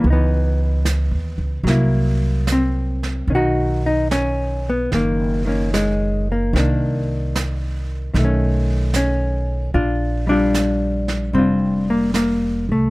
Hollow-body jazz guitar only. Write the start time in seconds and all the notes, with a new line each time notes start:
0.00 E3
0.07 B3 D#4
0.12 E3 B3
1.64 F#3 A#3
1.70 E4
2.52 C4
3.30 D#3 C#4
3.35 D#4 F#4
3.86 D#4
4.12 C#4
4.70 B3
4.94 D#3 A#3
5.46 D#3 A#3 C#4
5.74 G#3
6.32 A#3
6.54 D#3 A#3 C4
6.59 D4
8.14 D#3
8.19 A3
8.25 C#4
8.96 C#4
9.74 D4 F4
10.27 G3 D4
10.31 F4
11.35 G3 C4 D4 F4
11.90 A#3
12.15 A#3
12.72 A3